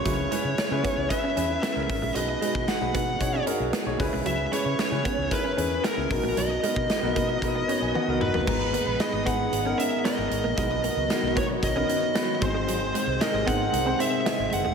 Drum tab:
CC |----------------|----------------|----------------|----------------|
HH |x-x-x-x-x-x-x-o-|x-x-x-x-x-x-x-o-|x-x-x-x-x-x-x-o-|x-x-x-x-x-x-----|
SD |----o-------o---|----o-------o---|----o-------o---|----o-----------|
T1 |----------------|----------------|----------------|------------o---|
T2 |----------------|----------------|----------------|--------------o-|
FT |----------------|----------------|----------------|---------------o|
BD |o-----o-o-----o-|---o--o-o-----o-|------o-o-----o-|---o--o-o-------|

CC |x---------------|----------------|----------------|
HH |--x-x-x-x-x-x-x-|x-x-x-x-x-x-x-x-|x-x-x-x-x-x-x-x-|
SD |----o-------o---|----o-------o---|----o-------o---|
T1 |----------------|----------------|----------------|
T2 |----------------|----------------|----------------|
FT |----------------|----------------|----------------|
BD |o-----o---------|o-----o-o-----o-|------o---------|